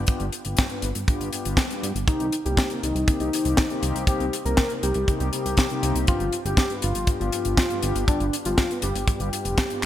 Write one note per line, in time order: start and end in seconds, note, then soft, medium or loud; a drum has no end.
0.07 0.26 G2 medium
0.07 0.26 B3 medium
0.07 0.26 D4 medium
0.07 0.26 F4 medium
0.07 0.26 G4 loud
0.07 kick loud
0.07 closed hi-hat medium
0.20 0.30 G1 medium
0.20 closed hi-hat soft
0.32 closed hi-hat medium
0.45 0.55 G1 medium
0.45 0.63 G2 medium
0.45 0.63 B3 medium
0.45 0.63 D4 medium
0.45 0.63 F4 medium
0.45 0.63 G4 medium
0.45 closed hi-hat medium
0.57 kick loud
0.57 snare loud
0.57 closed hi-hat medium
0.70 0.88 G2 medium
0.70 0.88 B3 medium
0.70 0.88 D4 medium
0.70 0.88 F4 medium
0.70 0.88 B4 medium
0.70 closed hi-hat soft
0.82 0.93 G1 medium
0.82 closed hi-hat medium
0.95 1.05 G1 medium
0.95 closed hi-hat medium
1.08 1.29 G2 medium
1.08 1.29 B3 medium
1.08 1.29 D4 medium
1.08 1.29 F4 medium
1.08 1.29 G4 loud
1.08 kick loud
1.08 closed hi-hat medium
1.20 1.30 G1 medium
1.20 closed hi-hat soft
1.33 1.61 G2 medium
1.33 1.61 B3 medium
1.33 1.61 D4 medium
1.33 1.61 F4 medium
1.33 1.61 G4 medium
1.33 closed hi-hat loud
1.45 1.55 G1 medium
1.45 closed hi-hat medium
1.57 kick loud
1.57 snare loud
1.57 closed hi-hat medium
1.70 1.88 G2 medium
1.70 1.88 B3 medium
1.70 1.88 D4 medium
1.70 1.88 F4 medium
1.70 1.88 G4 medium
1.70 closed hi-hat soft
1.83 1.93 G2 medium
1.83 closed hi-hat medium
1.95 2.05 G1 medium
1.95 closed hi-hat medium
2.08 2.26 C3 loud
2.08 2.26 A#3 medium
2.08 2.26 C4 medium
2.08 2.35 D#4 loud
2.08 2.26 D#4 medium
2.08 2.26 G4 loud
2.08 kick loud
2.08 closed hi-hat medium
2.20 2.30 C2 medium
2.20 closed hi-hat soft
2.32 closed hi-hat medium
2.45 2.56 C2 medium
2.45 2.63 C3 medium
2.45 2.63 A#3 medium
2.45 2.63 C4 medium
2.45 2.63 D#4 medium
2.45 2.73 G4 loud
2.45 2.63 G4 medium
2.45 closed hi-hat medium
2.57 kick loud
2.57 snare loud
2.57 closed hi-hat medium
2.70 2.88 C3 medium
2.70 2.88 A#3 medium
2.70 2.88 C4 medium
2.70 2.88 D#4 medium
2.70 2.88 A#4 medium
2.70 closed hi-hat soft
2.83 2.93 C2 medium
2.83 3.10 D#4 loud
2.83 closed hi-hat medium
2.95 3.05 C2 medium
2.95 closed hi-hat medium
3.08 3.29 C3 medium
3.08 3.29 A#3 medium
3.08 3.29 C4 medium
3.08 3.29 D#4 medium
3.08 3.29 G4 loud
3.08 kick loud
3.08 closed hi-hat medium
3.20 3.30 C2 medium
3.20 3.98 D#4 loud
3.20 closed hi-hat soft
3.33 3.61 C3 medium
3.33 3.61 A#3 medium
3.33 3.61 C4 medium
3.33 3.61 D#4 medium
3.33 3.61 G4 medium
3.33 closed hi-hat loud
3.45 3.55 C2 medium
3.45 closed hi-hat medium
3.57 kick loud
3.57 snare loud
3.57 closed hi-hat medium
3.70 4.05 C3 medium
3.70 4.05 A#3 medium
3.70 4.05 C4 medium
3.70 4.05 D#4 medium
3.70 4.05 G4 loud
3.70 closed hi-hat soft
3.83 3.93 C2 medium
3.83 closed hi-hat medium
3.95 4.05 C2 medium
3.95 closed hi-hat medium
4.07 4.26 C3 medium
4.07 4.26 A#3 medium
4.07 4.26 C4 medium
4.07 4.26 D#4 medium
4.07 4.35 G4 loud
4.07 4.26 G4 loud
4.07 kick loud
4.07 closed hi-hat medium
4.20 4.30 C2 medium
4.20 closed hi-hat soft
4.33 closed hi-hat loud
4.45 4.55 C2 medium
4.45 4.63 C3 medium
4.45 4.63 A#3 medium
4.45 4.63 C4 medium
4.45 4.63 D#4 medium
4.45 4.63 G4 medium
4.45 4.73 A#4 loud
4.45 closed hi-hat medium
4.57 kick loud
4.57 snare loud
4.57 closed hi-hat medium
4.70 4.88 C3 medium
4.70 4.88 A#3 medium
4.70 4.88 C4 medium
4.70 4.88 D#4 medium
4.70 4.88 A#4 medium
4.70 closed hi-hat soft
4.83 4.93 C2 medium
4.83 5.10 G4 loud
4.83 closed hi-hat medium
4.94 5.05 C2 medium
4.94 closed hi-hat medium
5.08 5.29 C3 medium
5.08 5.29 A#3 medium
5.08 5.29 C4 medium
5.08 5.29 D#4 medium
5.08 5.29 G4 loud
5.08 kick loud
5.08 closed hi-hat medium
5.20 5.30 C2 medium
5.20 5.98 G4 loud
5.20 closed hi-hat soft
5.33 5.61 C3 medium
5.33 5.61 A#3 medium
5.33 5.61 C4 medium
5.33 5.61 D#4 medium
5.33 5.61 G4 medium
5.33 closed hi-hat loud
5.45 5.55 C2 medium
5.45 closed hi-hat medium
5.57 kick loud
5.57 snare loud
5.57 closed hi-hat medium
5.70 6.05 C3 medium
5.70 6.05 A#3 medium
5.70 6.05 C4 medium
5.70 6.05 D#4 medium
5.70 6.05 G4 loud
5.70 closed hi-hat soft
5.83 5.93 C2 medium
5.83 closed hi-hat medium
5.95 6.05 C2 medium
5.95 closed hi-hat medium
6.07 6.26 G2 loud
6.07 6.26 B3 medium
6.07 6.26 D4 medium
6.07 6.35 F4 loud
6.07 6.26 F4 medium
6.07 6.26 G4 loud
6.07 kick loud
6.07 closed hi-hat medium
6.20 6.30 G1 medium
6.20 closed hi-hat soft
6.32 closed hi-hat medium
6.45 6.55 G1 medium
6.45 6.63 G2 medium
6.45 6.63 B3 medium
6.45 6.63 D4 medium
6.45 6.63 F4 medium
6.45 6.63 G4 medium
6.45 6.73 G4 loud
6.45 closed hi-hat medium
6.57 kick loud
6.57 snare loud
6.57 closed hi-hat medium
6.70 6.88 G2 medium
6.70 6.88 B3 medium
6.70 6.88 D4 medium
6.70 6.88 F4 medium
6.70 6.88 B4 medium
6.70 closed hi-hat soft
6.82 6.93 G1 medium
6.82 7.10 F4 loud
6.82 closed hi-hat medium
6.95 7.05 G1 medium
6.95 closed hi-hat medium
7.07 7.29 G2 medium
7.07 7.29 B3 medium
7.07 7.29 D4 medium
7.07 7.29 F4 medium
7.07 7.29 G4 loud
7.07 kick loud
7.07 closed hi-hat medium
7.20 7.30 G1 medium
7.20 7.98 F4 loud
7.20 closed hi-hat soft
7.32 7.61 G2 medium
7.32 7.61 B3 medium
7.32 7.61 D4 medium
7.32 7.61 F4 medium
7.32 7.61 G4 medium
7.32 closed hi-hat loud
7.45 7.56 G1 medium
7.45 closed hi-hat medium
7.57 kick loud
7.57 snare loud
7.57 closed hi-hat medium
7.70 8.05 G2 loud
7.70 8.05 B3 medium
7.70 8.05 D4 medium
7.70 8.05 F4 medium
7.70 8.05 G4 loud
7.70 closed hi-hat soft
7.83 7.93 G1 medium
7.83 closed hi-hat loud
7.96 8.05 G1 medium
7.96 closed hi-hat medium
8.08 8.26 G2 medium
8.08 8.26 B3 medium
8.08 8.35 D4 loud
8.08 8.26 D4 medium
8.08 8.26 F4 medium
8.08 8.26 G4 loud
8.08 kick loud
8.08 closed hi-hat medium
8.20 8.30 G1 medium
8.20 closed hi-hat soft
8.33 closed hi-hat medium
8.45 8.55 G1 medium
8.45 8.63 G2 medium
8.45 8.63 B3 medium
8.45 8.63 D4 medium
8.45 8.63 F4 medium
8.45 8.73 F4 medium
8.45 8.63 G4 loud
8.45 closed hi-hat medium
8.58 kick loud
8.58 snare loud
8.58 closed hi-hat medium
8.70 8.88 G2 medium
8.70 8.88 B3 medium
8.70 8.88 D4 medium
8.70 8.88 F4 medium
8.70 8.88 B4 medium
8.70 closed hi-hat soft
8.82 8.93 G1 medium
8.82 9.10 G4 loud
8.82 closed hi-hat loud
8.95 9.05 G1 medium
8.95 closed hi-hat medium
9.08 9.29 G2 medium
9.08 9.29 B3 medium
9.08 9.29 D4 medium
9.08 9.29 F4 medium
9.08 9.29 G4 loud
9.08 kick loud
9.08 closed hi-hat medium
9.20 9.30 G1 medium
9.20 9.85 G4 loud
9.20 closed hi-hat soft
9.33 9.61 G2 medium
9.33 9.61 B3 medium
9.33 9.61 D4 medium
9.33 9.61 F4 medium
9.33 9.61 G4 medium
9.33 closed hi-hat loud
9.45 9.55 F1 medium
9.45 closed hi-hat medium
9.57 kick loud
9.57 snare loud
9.57 closed hi-hat medium
9.70 9.85 G2 loud
9.70 9.85 B3 medium
9.70 9.85 D4 medium
9.70 9.85 F4 medium
9.70 9.85 G4 loud
9.70 closed hi-hat soft